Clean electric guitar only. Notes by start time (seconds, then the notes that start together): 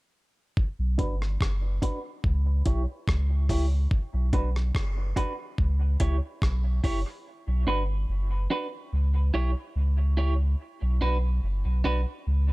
0.98 D4 F#4 B4
1.82 D4 F#4 B4
2.66 E4 G4 C#5
3.50 E4 G4 C#5
3.72 muted clean electric guitar stroke
4.33 D4 F#4 B4
5.16 D4 F#4 B4
6.00 E4 G4 C#5
6.84 E4 G4 C#5
7.06 muted clean electric guitar stroke
7.67 D4 F#4 B4
8.50 D4 F#4 B4
9.34 E4 G4 C#5
10.17 E4 G4 C#5
11.01 D4 F#4 B4
11.84 D4 F#4 B4